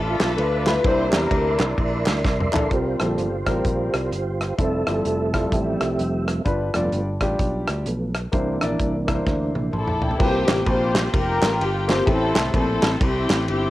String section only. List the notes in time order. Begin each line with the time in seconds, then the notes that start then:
Already playing: D4 F4 A4
0.38 D4 F4 B4
0.86 E4 G4 C5
1.13 D4 E4 A#4
9.74 D4 E4 A4
10.22 A#3 G4
10.68 F4 G4 C5
11.15 F4 G4 A#4
11.62 G4
11.91 G4
12.08 C4 E4 A4
12.55 C4 E4 A4
13.01 C4 E4 G4
13.49 C4 E4 G4